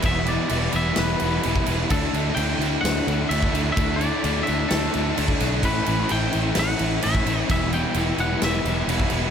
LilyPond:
<<
  \new Staff \with { instrumentName = "Clean electric guitar" } { \time 4/4 \key e \minor \tempo 4 = 129 e''8 d''4 e''8 b'4. r8 | a'4 g''4 fis''4 e''4 | e''8 d''4 e''8 a'4. r8 | b'4 g''4 fis''4 e''4 |
e''8 g''4 fis''8 e''4. r8 | }
  \new Staff \with { instrumentName = "Overdriven electric guitar" } { \time 4/4 \key e \minor <e g b e'>8 <g b e'>8 <e g b e'>8 <g b e'>4. <e g b e'>8 <g b e'>8 | <d a d' e'>8 <a d' e'>8 <d a d' e'>8 <a d' e'>4. <d a d' e'>8 <a d' e'>8 | <d a d' e'>8 <a d' e'>8 <d a d' e'>8 <a d' e'>4. <d a d' e'>8 <a d' e'>8 | <a, e a cis' e'>8 <a cis' e'>8 <a, e a cis' e'>8 <a cis' e'>4. <e a cis' e'>8 <a cis' e'>8 |
<e g b e'>8 <g b e'>8 <e g b e'>8 <g b e'>4. <e g b e'>8 <g b e'>8 | }
  \new Staff \with { instrumentName = "Overdriven electric guitar" } { \time 4/4 \key e \minor <e, b, e g b e'>8 <e g b e'>8 <e, b, e g b e'>8 <e g b e'>4 <e g b e'>8 <e g b e'>4 | <d a d' e'>8 <a d' e'>8 <d a d' e'>8 <a d' e'>4 <a d' e'>8 <d a d' e'>4 | <d a d' e'>8 <a d' e'>8 <d a d' e'>8 <a d' e'>4 <a d' e'>8 <d a d' e'>4 | <a, e a cis' e'>8 <a cis' e'>8 <a, e a cis' e'>8 <a cis' e'>4 <a cis' e'>8 <e a cis' e'>4 |
<e, b, e g b e'>8 <e g b e'>8 <e, b, e g b e'>8 <e g b e'>4 <e g b e'>8 <e g b e'>4 | }
  \new Staff \with { instrumentName = "Distorted electric guitar" } { \clef bass \time 4/4 \key e \minor <e, b, e>8 <e, b, e>8 <e, b, e>8 <e, b, e>8 <e, b, e>8 <e, b, e>8 <e, b, e>8 <e, b, e>8 | <d a d'>8 <d a d'>8 <d a d'>8 <d a d'>8 <d a d'>8 <d a d'>8 <d a d'>8 <d a d'>8 | <d a d'>8 <d a d'>8 <d a d'>8 <d a d'>8 <d a d'>8 <d a d'>8 <d a d'>8 <d a d'>8 | <a, e a>8 <a, e a>8 <a, e a>8 <a, e a>8 <a, e a>8 <a, e a>8 <a, e a>8 <a, e a>8 |
<e, b, e>8 <e, b, e>8 <e, b, e>8 <e, b, e>8 <e, b, e>8 <e, b, e>8 <e, b, e>8 <e, b, e>8 | }
  \new Staff \with { instrumentName = "Fingered electric bass" } { \clef bass \time 4/4 \key e \minor e,,4 e,,8 e,,8 e,,8 e,,8 e,,8 e,,8 | d,8 d,8 d,8 d,8 d,8 d,8 d,8 d,8 | d,4 d,8 d,8 d,8 d,8 d,8 b,,8 | a,,8 a,,8 a,,8 a,,8 a,,8 a,,8 a,,8 a,,8 |
e,,4 e,,8 e,,8 e,,8 e,,8 e,,8 e,,8 | }
  \new DrumStaff \with { instrumentName = "Drums" } \drummode { \time 4/4 <cymc bd>8 cymc8 cymc8 cymc8 <cymc sn>8 cymc8 cymc16 bd16 cymc8 | <cymc bd>8 cymc8 cymc8 cymc8 <cymc sn>8 cymc8 cymc16 bd16 cymc8 | <cymc bd>8 cymc8 cymc8 cymc8 <cymc sn>8 cymc8 cymc16 bd16 <cymc sn>8 | <cymc bd>8 cymc8 cymc8 cymc8 <cymc sn>8 cymc8 cymc16 bd16 cymc8 |
<cymc bd>8 cymc8 cymc8 cymc8 <cymc sn>8 cymc8 cymc16 bd16 cymc8 | }
>>